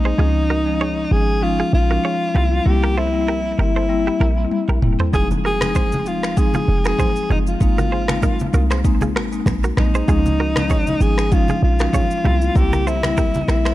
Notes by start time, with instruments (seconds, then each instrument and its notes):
Already playing: 808-style bass A#1, alto saxophone D#4
0.05 clean electric guitar G#4 C5
0.18 808-style bass C#2, marimba F3 G#3 C#4 D#4, clean electric guitar F4 G#4
0.50 clean electric guitar F#4 A#4
0.66 marimba F3 G#3 C#4 D#4
0.81 clean electric guitar G#4 C#5
1.11 808-style bass G#1, marimba F3 G#3 C#4 D#4, alto saxophone G#4
1.42 marimba F3 G#3 C#4 D#4, alto saxophone F4
1.60 clean electric guitar F4 G#4
1.73 808-style bass A#1, alto saxophone F4
1.89 marimba F3 G#3 C#4 D#4, clean electric guitar F#4 A#4
2.05 clean electric guitar G#4 C#5
2.35 808-style bass C2, marimba G3 A#3 C4 E4, clean electric guitar E4 G4
2.65 808-style bass C2, marimba G3 A#3 C4 E4, alto saxophone G4
2.84 clean electric guitar G4 A#4
2.98 alto saxophone E4, clean electric guitar A4 C5
3.13 marimba G3 A#3 C4 E4
3.28 clean electric guitar G4 A#4
3.58 808-style bass G1, marimba G3 A#3 C4 E4, alto saxophone E4, clean electric guitar G4 A#4
3.76 clean electric guitar A4 C5
3.89 marimba G3 A#3 C4 E4
4.07 clean electric guitar E4 G4
4.20 808-style bass A#1, clean electric guitar G4 A#4
4.37 marimba G3 A#3 C4 E4
4.51 high tom
4.69 808-style bass A#1, clean electric guitar G4 A#4
4.82 808-style bass E1, marimba G3 A#3 C4 E4, mid tom
4.99 clean electric guitar A4 C5, floor tom
5.13 808-style bass F1, marimba F3 G#3 C4 D#4, clean electric guitar F4 G#4, alto saxophone G#4, kick, shaker
5.31 high conga, shaker
5.45 clean electric guitar F#4 A#4, alto saxophone G#4
5.61 marimba F3 G#3 C4 D#4, finger snap, cross-stick, high conga, shaker
5.75 clean electric guitar G#4 C5, kick, low conga, shaker
5.92 high conga, shaker
6.06 808-style bass D#1, marimba F3 G#3 C4 D#4, alto saxophone F4, shaker
6.23 finger snap, cross-stick, shaker
6.37 marimba F3 G#3 C4 D#4, alto saxophone G#4, kick, shaker
6.54 clean electric guitar F4 G#4, high conga, shaker
6.68 808-style bass F1
6.84 marimba F3 G#3 C4 D#4, clean electric guitar F#4 A#4, alto saxophone G#4, finger snap, cross-stick, shaker
6.99 clean electric guitar G#4 C5, kick, low conga, shaker
7.16 shaker
7.30 808-style bass F#1, marimba F3 G#3 C4 D#4, alto saxophone D#4, clean electric guitar F4 G#4, low conga
7.47 alto saxophone F4, shaker
7.61 808-style bass G#1, marimba G#3 A#3 C4 D#4, kick, shaker
7.78 clean electric guitar F#4 A#4, high conga, shaker
7.92 clean electric guitar G#4 C5
8.08 marimba G#3 A#3 C4 D#4, finger snap, cross-stick, high conga, shaker
8.22 clean electric guitar D#4 A#4, kick, low conga, shaker
8.39 high conga, shaker
8.53 808-style bass C2, marimba G#3 A#3 C4 D#4, clean electric guitar F#4 A#4, shaker
8.71 clean electric guitar G#4 C5, finger snap, cross-stick, shaker
8.84 marimba G#3 A#3 C4 D#4, kick, shaker
9.01 clean electric guitar F4 G#4, high conga, shaker
9.16 808-style bass G#1, clean electric guitar F#4 A#4, finger snap, cross-stick
9.32 marimba G#3 A#3 C4 D#4, shaker
9.46 808-style bass A#1, finger snap, kick, cross-stick, low conga, shaker
9.64 clean electric guitar F#4 A#4, shaker
9.77 808-style bass A#1, marimba G#3 A#3 C4 D#4, alto saxophone D#4, finger snap, cross-stick, low conga
9.95 clean electric guitar G#4 C5, shaker
10.08 808-style bass C#2, marimba F3 G#3 C#4 D#4, clean electric guitar F4 G#4, kick, shaker
10.26 high conga, shaker
10.40 clean electric guitar F#4 A#4
10.56 marimba F3 G#3 C#4 D#4, finger snap, cross-stick, high conga, shaker
10.70 clean electric guitar G#4 C#5, kick, low conga, shaker
10.87 high conga, shaker
11.01 808-style bass G#1, marimba F3 G#3 C#4 D#4, alto saxophone G#4, shaker
11.18 finger snap, cross-stick, shaker
11.32 marimba F3 G#3 C#4 D#4, alto saxophone F4, kick, shaker
11.48 clean electric guitar F4 G#4, high conga, shaker
11.63 808-style bass A#1, alto saxophone F4
11.79 marimba F3 G#3 C#4 D#4, clean electric guitar F#4 A#4, finger snap, cross-stick, shaker
11.93 clean electric guitar G#4 C#5, kick, low conga, shaker
12.11 shaker
12.25 808-style bass C2, marimba G3 A#3 C4 E4, clean electric guitar E4 G4, low conga
12.42 shaker
12.55 808-style bass C2, marimba G3 A#3 C4 E4, alto saxophone G4, kick, shaker
12.73 clean electric guitar G4 A#4, high conga, shaker
12.87 alto saxophone E4, clean electric guitar A4 C5, shaker
13.03 marimba G3 A#3 C4 E4, finger snap, cross-stick, high conga, shaker
13.17 clean electric guitar G4 A#4, kick, low conga, shaker
13.34 high conga, shaker
13.48 808-style bass A#1, marimba G3 A#3 C4 E4, alto saxophone E4, clean electric guitar G4 A#4, finger snap, cross-stick, shaker
13.65 clean electric guitar A4 C5, finger snap, cross-stick, shaker